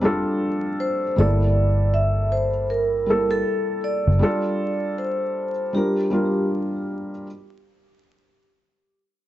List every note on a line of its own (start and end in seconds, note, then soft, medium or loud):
0.00 0.23 F1 loud
0.00 1.15 F3 medium
0.00 1.14 G3 medium
0.00 1.16 G3 medium
0.00 1.14 C4 medium
0.00 0.02 D4 medium
0.00 1.14 D4 medium
0.00 1.02 D4 medium
0.00 0.04 F4 medium
0.00 1.03 F4 medium
0.00 1.14 G4 medium
0.00 0.05 A4 medium
0.05 1.03 A4 loud
0.80 1.15 C5 medium
1.16 3.42 G1 loud
1.16 2.46 G3 medium
1.16 2.47 A#3 medium
1.16 2.48 E4 medium
1.16 2.48 A4 medium
1.16 1.96 D5 loud
1.94 2.33 E5 loud
2.32 2.67 C5 medium
2.70 3.32 A#4 medium
3.06 4.06 G3 medium
3.06 4.06 A#3 medium
3.06 4.07 E4 medium
3.06 4.08 A4 medium
3.31 3.85 A4 loud
3.84 4.94 D5 loud
4.07 4.21 F#1 loud
4.19 5.50 G3 medium
4.19 5.51 D4 medium
4.19 5.51 F4 medium
4.19 5.52 A4 medium
4.98 5.76 C5 medium
5.73 6.06 G3 medium
5.73 6.07 D4 medium
5.73 6.07 F4 medium
5.73 6.46 G4 medium
5.73 6.08 A#4 medium
6.10 7.10 G3 medium
6.10 7.10 D4 medium
6.10 7.11 F4 medium
6.14 7.12 A#4 medium